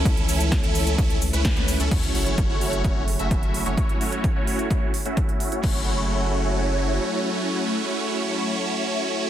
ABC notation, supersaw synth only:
X:1
M:4/4
L:1/16
Q:1/4=129
K:F#m
V:1 name="Supersaw synth"
[CE]2 [CEA]3 [CEA]3 E2 z [CEB]4 [CEA] | [A,CEFc]2 [A,CEFc]3 [A,CEFc]3 [A,CEc]2 z [A,CEFe]4 [A,CEFc] | [A,CEFc]2 [A,CEFc]3 [A,CEFc]3 z3 [A,CEFe]4 [A,CEFc] | [A,CEFc]16- |
[A,CEFc]16 |]